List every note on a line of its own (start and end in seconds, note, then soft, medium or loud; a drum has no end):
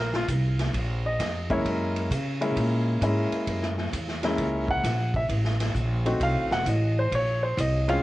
0.00 0.27 A#1 medium
0.00 0.13 A#4 medium
0.13 0.24 F4 medium
0.13 snare soft
0.28 0.72 C2 medium
0.28 kick soft
0.28 hi-hat pedal medium
0.28 ride medium
0.59 snare soft
0.59 ride soft
0.73 1.18 A#1 medium
0.73 kick soft
0.73 ride medium
1.06 1.48 D#5 medium
1.19 1.64 F2 medium
1.19 kick soft
1.19 snare soft
1.19 hi-hat pedal medium
1.19 ride medium
1.50 2.07 G#3 medium
1.50 2.08 A#3 medium
1.50 2.08 C#4 medium
1.50 2.08 E4 medium
1.50 1.66 C#5 medium
1.50 kick medium
1.50 ride soft
1.65 2.09 F#2 medium
1.65 kick soft
1.65 ride medium
1.96 ride soft
2.10 2.55 C#3 loud
2.10 kick soft
2.10 hi-hat pedal medium
2.10 ride medium
2.41 2.99 G#3 medium
2.41 2.99 A#3 medium
2.41 2.99 C#4 medium
2.41 2.99 E4 medium
2.41 ride soft
2.56 3.00 A#2 medium
2.56 kick soft
2.56 ride medium
3.01 3.30 G#2 medium
3.01 3.72 G#3 medium
3.01 3.72 A#3 medium
3.01 3.72 C#4 medium
3.01 3.73 E4 medium
3.01 kick soft
3.01 hi-hat pedal medium
3.01 ride medium
3.31 muted upright bass stroke soft
3.31 ride soft
3.47 3.91 F#2 medium
3.47 kick soft
3.47 ride medium
3.63 snare soft
3.78 snare soft
3.93 4.37 E2 medium
3.93 kick soft
3.93 hi-hat pedal soft
3.93 ride medium
4.08 snare soft
4.23 4.81 G#3 medium
4.23 4.82 A#3 medium
4.23 4.82 C#4 medium
4.23 4.82 E4 medium
4.23 snare soft
4.23 ride soft
4.38 4.82 C#2 medium
4.38 kick soft
4.38 ride medium
4.69 5.12 F#5 loud
4.69 kick soft
4.84 5.28 A#1 medium
4.84 kick soft
4.84 snare soft
4.84 hi-hat pedal soft
4.84 ride medium
5.14 5.25 E5 medium
5.14 kick medium
5.14 ride soft
5.29 5.74 A1 medium
5.29 kick soft
5.29 ride medium
5.45 snare soft
5.60 snare soft
5.60 ride medium
5.75 6.19 A#1 medium
5.75 kick soft
5.75 hi-hat pedal soft
6.06 6.63 A3 medium
6.06 6.64 C4 medium
6.06 6.64 D#4 medium
6.06 6.64 F#4 medium
6.06 ride soft
6.20 6.35 C2 medium
6.20 6.52 F5 medium
6.20 kick soft
6.20 ride medium
6.35 6.50 A1 medium
6.50 6.65 F1 medium
6.50 6.67 F#5 loud
6.50 snare medium
6.66 7.10 A1 medium
6.66 6.97 D#5 medium
6.66 kick soft
6.66 hi-hat pedal medium
6.66 ride medium
6.99 7.13 C5 medium
7.11 7.56 A#1 medium
7.11 7.43 C#5 medium
7.11 kick soft
7.11 ride medium
7.43 7.57 C5 medium
7.57 8.02 C2 loud
7.57 7.88 D#5 medium
7.57 kick soft
7.57 hi-hat pedal medium
7.57 ride medium
7.88 8.03 G#3 medium
7.88 8.03 C4 medium
7.88 8.03 C#4 medium
7.88 8.03 F4 medium
7.88 8.03 F5 medium
7.88 ride soft